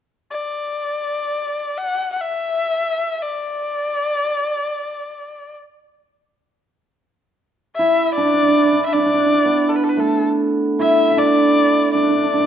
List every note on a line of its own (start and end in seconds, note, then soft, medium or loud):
0.31 1.79 D5 medium
1.78 2.12 F#5 medium
2.13 2.23 F#5 medium
2.21 3.23 E5 medium
3.22 5.54 D5 medium
7.76 10.79 E4 medium
7.76 8.13 E5 medium
8.14 8.24 D4 medium
8.14 8.81 D5 medium
8.25 8.33 D4 soft
8.34 8.42 D4 soft
8.42 8.48 D4 soft
8.48 8.57 D4 soft
8.57 8.64 D4 soft
8.64 8.72 D4 soft
8.72 8.79 D4 soft
8.79 8.94 D4 soft
8.86 8.95 E5 medium
8.93 8.99 D4 medium
8.93 9.70 D5 medium
9.00 9.06 D4 soft
9.06 9.13 D4 medium
9.14 9.18 D4 soft
9.18 9.26 D4 medium
9.26 9.34 D4 soft
9.34 11.17 D4 medium
9.45 12.46 B3 medium
9.69 9.77 A4 soft
9.76 9.85 B4 medium
9.84 9.91 A4 medium
9.89 10.01 B4 soft
9.97 12.46 A3 soft
9.97 10.24 A4 medium
10.79 11.11 E4 medium
10.79 11.20 E5 medium
11.11 12.46 E4 medium
11.17 11.94 D4 medium
11.17 11.93 D5 medium
11.93 12.02 D4 medium
11.93 12.46 D5 medium
12.03 12.08 D4 soft
12.08 12.15 D4 medium
12.15 12.23 D4 soft
12.23 12.33 D4 medium
12.34 12.39 D4 soft
12.40 12.46 D4 medium